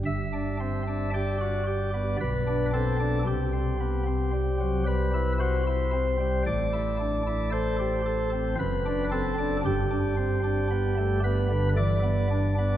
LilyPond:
<<
  \new Staff \with { instrumentName = "Pipe organ" } { \time 3/4 \key g \major \tempo 4 = 56 << { e''4 d''4 b'8 a'8 | g'4. b'8 c''4 | d''4 c''4 b'8 a'8 | g'4. b'8 d''4 | } \\ { g,16 d'16 c'16 d'16 g'16 fis'16 g'16 b16 b,16 d'16 c'16 d'16 | c16 c'16 b16 c'16 g16 fis16 g16 e'16 fis'16 e'16 c'16 g16 | a,16 e'16 d'16 e'16 a'16 g'16 a'16 c'16 fis,16 d'16 c'16 d'16 | g,16 d'16 c'16 d'16 b16 a16 b16 d16 e16 b16 d'16 b16 | } >> }
  \new Staff \with { instrumentName = "Pipe organ" } { \clef bass \time 3/4 \key g \major g,,2 b,,4 | c,2. | a,,2 fis,,4 | g,,2. | }
>>